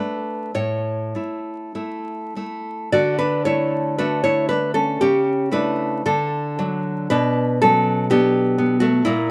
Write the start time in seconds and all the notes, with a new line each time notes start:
Already playing: A3 D4 B4
0.55 A2 C#5
1.15 A3 E4
1.75 A3 E4
2.36 A3 E4
2.92 D3 F#4 D5
3.19 D4 B4
3.45 A3 E4 C#5
3.98 A3 D4 F#4 B4
4.24 E4 C#5
4.49 D4 B4
4.74 C#4 A4
5.01 C#3 C#4 G4
5.52 A3 D4 E4 B4
6.06 D3 D4 A4
6.59 F#3 D4
7.10 B2 D4 B4
7.62 F#3 C#4 A4
8.10 F#3 B3 D4 G4
8.58 B3
8.80 A3 F#4
9.05 A#2 A#3 E4